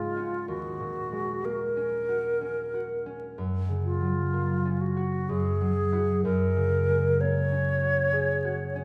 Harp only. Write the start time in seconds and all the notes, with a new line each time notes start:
Already playing: G#2 G#3 D#4 G#4
0.17 C#4 F#4
0.48 D#2
0.80 A#2
1.12 G#3
1.44 A#3
1.77 C#4
2.09 F#4
2.41 C#4
2.74 F#4
3.06 C#4
3.38 F#2
3.69 C#3
4.01 F#3
4.33 A#3
4.65 C#4
4.97 F#4
5.29 F#2
5.61 F#3
5.92 E4 F#4
6.25 F#2
6.57 C#3
6.89 G#3
7.20 A#3
7.52 C#4
7.82 F#4
8.13 G#4
8.45 F#4
8.75 C#4